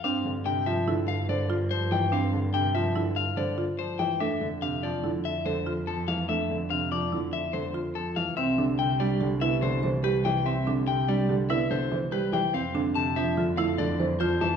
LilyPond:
<<
  \new Staff \with { instrumentName = "Clean electric guitar" } { \time 5/4 \key f \lydian \tempo 4 = 144 f''8 r8 g''8 e''8 r8 f''8 d''8 r8 c''8 g''8 | f''8 r8 g''8 e''8 r8 f''8 d''8 r8 c''8 g''8 | e''8 r8 f''8 d''8 r8 e''8 c''8 r8 a'8 f''8 | e''8 r8 f''8 d''8 r8 e''8 c''8 r8 a'8 f''8 |
e''8 r8 g''8 d''8 r8 e''8 c''8 r8 b'8 g''8 | e''8 r8 g''8 d''8 r8 e''8 c''8 r8 b'8 g''8 | f''8 r8 a''8 e''8 r8 f''8 d''8 r8 c''8 a''8 | }
  \new Staff \with { instrumentName = "Marimba" } { \time 5/4 \key f \lydian d'8 r8 d'8 f'8 e'8 r8 c''8 f'8 r4 | d'8 r8 d'8 f'8 e'8 r8 c''8 f'8 r4 | d'8 r8 d'8 f'8 e'8 r8 a'8 f'8 r4 | d'8 r8 d'8 f'8 e'8 r8 a'8 f'8 r4 |
c'8 d'8 r8 d'8 g'8 e'8 r8 c''8 g'8 r8 | c'8 d'8 r8 d'8 g'8 e'8 r8 c''8 g'8 r8 | c'8 d'8 r8 d'8 f'8 e'8 r8 c''8 f'8 r8 | }
  \new Staff \with { instrumentName = "Grand piano" } { \clef bass \time 5/4 \key f \lydian c'8 d8 c8 f8 d8 r8 d8 r8 f8 e8 | c'8 d8 c8 f8 d8 r8 d8 r8 f8 e8 | a8 d8 c8 f8 d8 r8 d8 r8 f8 e8 | a8 d8 c8 f8 d8 r8 d8 r8 f8 e8 |
c'8 d8 c8 g8 d8 b8 d8 e8 g8 e8 | c'8 d8 c8 g8 d8 b8 d8 e8 g8 e8 | c'8 d8 c8 f8 d8 a8 d8 e8 f8 e8 | }
  \new Staff \with { instrumentName = "Cello" } { \clef bass \time 5/4 \key f \lydian g,1~ g,4~ | g,1~ g,4 | f,1~ f,4~ | f,1~ f,4 |
c,1~ c,4~ | c,1~ c,4 | f,1~ f,4 | }
>>